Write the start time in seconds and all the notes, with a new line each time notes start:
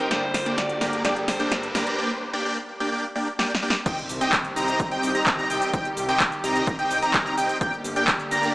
Already playing: G3 C4 D#4 G4 A#4, riser
0.10 G1 D3 G3 A#3 D4 G4 C5 D5 G5, snare, closed hi-hat
0.34 G1, snare, open hi-hat
0.46 A#3 D4 G4 D5 G5, closed hi-hat
0.58 G1 D5, snare, closed hi-hat
0.69 closed hi-hat
0.81 G1 A#3 D4 G4 D5 A#5, snare, open hi-hat
0.93 closed hi-hat
1.03 G1 G3 A#3 D4 G4 D5 G5, snare, closed hi-hat
1.16 closed hi-hat
1.28 G1 C5, snare, open hi-hat
1.40 A#3 D4 G4 D5 G5, closed hi-hat
1.51 G1, snare, closed hi-hat
1.63 closed hi-hat
1.75 G1 A#3 D4 G4 D5 A#5, snare, open hi-hat
1.87 closed hi-hat
1.98 A#3 D4 G4 D5 G5
2.33 A#3 D4 G4 D5 G5
2.45 A#3 D4 G4 D5 G5
2.80 A#3 D4 G4 D5 G5
2.92 A#3 D4 G4 D5 G5
3.16 A#3 D4 G4 D5 G5
3.39 A#3 D4 G4 D5 G5, snare
3.55 snare
3.62 A#3 D4 G4 D5 G5
3.70 snare
3.86 C2 D#3 G3 C4 D#4 G4 D#5 G5, kick, closed hi-hat, crash, impact, cabasa
3.98 cabasa
4.09 C2, open hi-hat, cabasa
4.21 C4 D#4 G4 D#5 G5, closed hi-hat, cabasa
4.33 C2, kick, clap, closed hi-hat, cabasa
4.45 closed hi-hat, cabasa
4.56 C2 C4 D#4 G4 D#5 A#5, open hi-hat, cabasa
4.68 closed hi-hat, cabasa
4.80 C2, kick, closed hi-hat, cabasa
4.91 C4 D#4 G4 D#5 G5, closed hi-hat, cabasa
5.03 C2, open hi-hat, cabasa
5.15 C4 D#4 G4 D#5 A#5, closed hi-hat, cabasa
5.26 C2, kick, clap, closed hi-hat, cabasa
5.38 C4 D#4 G4 D#5 A#5, cabasa
5.50 C2 C4 D#4 G4 D#5 G5, open hi-hat, cabasa
5.62 closed hi-hat, cabasa
5.73 C2 C4 D#4 G4 D#5 G5, kick, closed hi-hat, cabasa
5.85 closed hi-hat, cabasa
5.97 C2, open hi-hat, cabasa
6.09 C4 D#4 G4 D#5 G5, closed hi-hat, cabasa
6.20 C2, kick, clap, closed hi-hat, cabasa
6.32 closed hi-hat, cabasa
6.44 C2 C4 D#4 G4 D#5 A#5, open hi-hat, cabasa
6.56 closed hi-hat, cabasa
6.67 C2, kick, closed hi-hat, cabasa
6.79 C4 D#4 G4 D#5 G5, closed hi-hat, cabasa
6.91 C2, open hi-hat, cabasa
7.02 C4 D#4 G4 D#5 A#5, closed hi-hat, cabasa
7.14 C2, kick, clap, closed hi-hat, cabasa
7.26 C4 D#4 G4 D#5 A#5, cabasa
7.37 C2 C4 D#4 G4 D#5 G5, open hi-hat, cabasa
7.49 closed hi-hat, cabasa
7.61 G1 D3 G3 A#3 D4 G4 D5 G5, kick, closed hi-hat, cabasa
7.73 cabasa
7.84 G1, open hi-hat, cabasa
7.96 A#3 D4 G4 D5 G5, closed hi-hat, cabasa
8.08 G1, kick, clap, closed hi-hat, cabasa
8.20 closed hi-hat, cabasa
8.31 G1 A#3 D4 G4 D5 A#5, open hi-hat, cabasa
8.43 closed hi-hat, cabasa